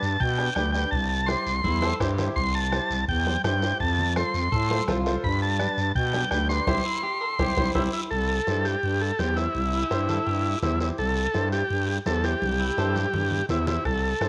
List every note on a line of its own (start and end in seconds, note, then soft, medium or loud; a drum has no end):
0.00 0.17 G2 medium
0.00 0.22 A5 medium
0.00 short guiro medium
0.20 0.49 B2 loud
0.20 0.54 G5 medium
0.20 bombo low medium
0.20 long guiro medium
0.38 0.45 D4 medium
0.38 0.45 G4 medium
0.38 0.45 B4 medium
0.38 bombo rim medium
0.55 0.85 D2 loud
0.55 0.63 D4 medium
0.55 0.63 G4 medium
0.55 0.63 B4 medium
0.55 0.71 G5 medium
0.55 bombo rim medium
0.55 high conga medium
0.55 short guiro medium
0.72 0.93 D4 medium
0.72 0.93 G4 medium
0.72 0.93 B4 medium
0.72 0.90 G5 medium
0.72 short guiro medium
0.91 1.35 C2 loud
0.91 1.08 A5 medium
0.91 bombo low medium
0.91 long guiro medium
1.09 1.28 A5 medium
1.26 1.47 E4 medium
1.26 1.47 G4 medium
1.26 1.48 C5 medium
1.26 1.95 C6 loud
1.26 bombo rim medium
1.26 high conga medium
1.26 short guiro medium
1.46 1.61 C2 medium
1.46 short guiro medium
1.64 1.93 E2 loud
1.64 1.82 E4 medium
1.64 bombo low medium
1.64 high conga loud
1.64 long guiro medium
1.82 1.89 E4 medium
1.82 1.89 G4 medium
1.82 2.00 A4 loud
1.82 1.89 C5 medium
1.82 bombo rim medium
1.82 high conga medium
2.00 2.29 G2 loud
2.00 2.07 E4 medium
2.00 2.26 G4 medium
2.00 2.07 G4 medium
2.00 2.07 C5 loud
2.00 bombo low medium
2.00 bombo rim medium
2.00 short guiro medium
2.18 2.37 E4 medium
2.18 2.37 G4 medium
2.18 2.38 C5 medium
2.18 low conga medium
2.18 short guiro medium
2.36 2.80 C2 loud
2.36 2.55 C6 loud
2.36 bombo low medium
2.36 long guiro medium
2.55 3.05 A5 medium
2.72 2.91 E4 medium
2.72 2.91 G4 medium
2.72 2.91 C5 medium
2.72 bombo rim medium
2.72 high conga medium
2.72 short guiro medium
2.90 3.05 C2 medium
2.90 short guiro medium
3.08 3.37 E2 loud
3.08 3.42 G5 medium
3.08 bombo low medium
3.08 long guiro medium
3.26 3.33 E4 medium
3.26 3.33 G4 medium
3.26 3.33 C5 medium
3.26 high conga medium
3.44 3.73 G2 loud
3.44 3.50 E4 medium
3.44 3.51 G4 medium
3.44 3.51 C5 medium
3.44 3.78 G5 medium
3.44 bombo rim medium
3.44 high conga medium
3.44 short guiro medium
3.62 3.80 E4 medium
3.62 3.81 G4 medium
3.62 3.81 C5 medium
3.62 short guiro medium
3.80 4.23 F2 loud
3.80 4.14 A5 loud
3.80 bombo low medium
3.80 long guiro medium
3.99 low conga medium
4.16 4.35 F4 medium
4.16 4.35 A4 medium
4.16 4.35 C5 medium
4.16 4.84 C6 medium
4.16 bombo rim medium
4.16 high conga medium
4.16 short guiro medium
4.34 4.48 F2 medium
4.34 short guiro medium
4.52 4.81 A2 loud
4.52 4.89 A4 loud
4.52 bombo low loud
4.52 long guiro medium
4.70 4.76 F4 medium
4.70 4.77 A4 medium
4.70 4.77 C5 medium
4.70 high conga medium
4.88 5.17 C2 loud
4.88 5.13 F4 medium
4.88 4.94 F4 medium
4.88 4.95 A4 medium
4.88 4.95 C5 loud
4.88 bombo rim medium
4.88 high conga medium
4.88 low conga medium
4.88 short guiro medium
5.06 5.24 F4 medium
5.06 5.24 A4 medium
5.06 5.24 C5 loud
5.06 short guiro medium
5.24 5.67 G2 loud
5.24 5.41 B5 loud
5.24 bombo low medium
5.24 long guiro medium
5.42 5.92 A5 medium
5.59 5.78 D4 medium
5.59 5.79 G4 medium
5.59 5.79 B4 medium
5.59 bombo rim medium
5.59 high conga medium
5.59 short guiro medium
5.77 5.92 G2 medium
5.77 short guiro medium
5.95 6.24 B2 loud
5.95 6.30 G5 medium
5.95 bombo low medium
5.95 long guiro medium
6.13 6.20 D4 medium
6.13 6.20 G4 medium
6.13 6.20 B4 medium
6.13 bombo rim medium
6.13 high conga medium
6.31 6.60 D2 loud
6.31 6.38 D4 medium
6.31 6.38 G4 medium
6.31 6.38 B4 medium
6.31 6.48 G5 loud
6.31 bombo rim medium
6.31 high conga medium
6.31 short guiro medium
6.49 6.67 D4 medium
6.49 6.66 G4 medium
6.49 6.68 B4 medium
6.49 7.71 C6 loud
6.49 short guiro medium
6.67 6.81 C2 medium
6.67 6.79 E4 loud
6.67 6.79 G4 loud
6.67 6.79 C5 loud
6.67 bombo low loud
6.67 high conga loud
6.67 long guiro medium
6.85 7.03 E4 medium
7.03 7.21 G4 loud
7.21 7.39 A4 loud
7.39 7.53 C2 medium
7.39 7.51 E4 loud
7.39 7.57 G4 medium
7.39 7.51 G4 loud
7.39 7.51 C5 loud
7.39 bombo low loud
7.39 high conga loud
7.39 long guiro loud
7.57 7.71 C2 loud
7.57 7.74 E4 medium
7.57 7.69 E4 medium
7.57 7.69 G4 medium
7.57 7.69 C5 loud
7.57 bombo low loud
7.57 high conga medium
7.57 long guiro loud
7.75 7.89 C2 loud
7.75 8.09 E4 medium
7.75 7.83 E4 loud
7.75 7.87 E4 loud
7.75 7.87 G4 medium
7.75 7.87 C5 loud
7.75 bombo low medium
7.75 high conga loud
7.75 long guiro loud
7.93 8.01 E4 medium
8.11 8.40 C2 loud
8.11 8.66 A4 loud
8.11 high conga soft
8.11 long guiro medium
8.47 8.76 G2 medium
8.47 8.72 E4 medium
8.47 8.72 G4 medium
8.47 8.73 C5 medium
8.47 high conga medium
8.47 short guiro medium
8.65 9.02 G4 medium
8.65 short guiro medium
8.83 9.12 G2 medium
8.83 high conga soft
8.83 long guiro medium
9.01 9.20 A4 medium
9.19 9.48 E2 medium
9.19 9.25 E4 medium
9.19 9.37 G4 loud
9.19 9.25 G4 medium
9.19 9.26 C5 medium
9.19 high conga medium
9.19 short guiro medium
9.36 10.58 E4 medium
9.36 9.56 E4 medium
9.36 9.56 G4 medium
9.36 9.56 C5 medium
9.36 short guiro medium
9.55 9.84 C2 loud
9.55 high conga soft
9.55 long guiro medium
9.73 9.82 E4 medium
9.82 10.09 G4 loud
9.90 10.19 G2 medium
9.90 10.16 E4 medium
9.90 10.16 G4 medium
9.90 10.16 C5 loud
9.90 high conga medium
9.90 short guiro medium
10.09 10.26 A4 loud
10.09 low conga medium
10.09 short guiro medium
10.27 10.55 G2 medium
10.27 10.52 G4 medium
10.27 high conga soft
10.27 long guiro medium
10.62 10.91 E2 loud
10.62 10.69 E4 medium
10.62 10.79 E4 medium
10.62 10.69 G4 medium
10.62 10.69 C5 medium
10.62 high conga medium
10.62 low conga medium
10.62 short guiro medium
10.80 10.99 E4 medium
10.80 10.89 E4 medium
10.80 10.99 G4 medium
10.80 10.99 C5 medium
10.80 short guiro medium
10.98 11.27 C2 loud
10.98 11.49 A4 loud
10.98 high conga soft
10.98 long guiro medium
11.34 11.63 G2 medium
11.34 11.59 E4 medium
11.34 11.59 G4 medium
11.34 11.60 C5 medium
11.34 high conga medium
11.34 short guiro medium
11.52 11.88 G4 medium
11.52 short guiro medium
11.70 11.99 G2 medium
11.70 high conga soft
11.70 long guiro medium
11.89 11.97 G4 medium
12.06 12.35 E2 loud
12.06 12.12 E4 medium
12.06 12.12 G4 medium
12.06 12.25 A4 loud
12.06 12.13 C5 medium
12.06 high conga medium
12.06 short guiro medium
12.24 12.43 E4 medium
12.24 12.43 G4 medium
12.24 13.46 G4 loud
12.24 12.43 C5 medium
12.24 short guiro medium
12.42 12.71 C2 loud
12.42 high conga medium
12.42 long guiro medium
12.60 12.76 E4 medium
12.77 13.07 G2 loud
12.77 13.03 E4 medium
12.77 13.03 G4 medium
12.77 12.95 A4 loud
12.77 13.03 C5 medium
12.77 high conga medium
12.77 short guiro medium
12.95 13.13 G4 medium
12.95 high conga medium
12.95 short guiro medium
13.13 13.42 G2 medium
13.13 13.40 E4 medium
13.13 low conga medium
13.13 long guiro medium
13.31 low conga medium
13.49 13.78 E2 medium
13.49 13.56 E4 medium
13.49 13.66 E4 medium
13.49 13.56 G4 medium
13.49 13.56 C5 medium
13.49 low conga medium
13.49 short guiro medium
13.67 13.86 E4 medium
13.67 13.84 E4 medium
13.67 13.86 G4 medium
13.67 13.86 C5 medium
13.67 low conga loud
13.67 short guiro medium
13.85 14.14 C2 loud
13.85 14.29 A4 loud
13.85 bombo low medium
13.85 bombo rim medium
13.85 high conga soft
13.85 long guiro medium
14.21 14.29 G2 medium
14.21 14.29 E4 medium
14.21 14.29 G4 medium
14.21 14.29 C5 medium
14.21 bombo rim medium
14.21 high conga medium
14.21 short guiro medium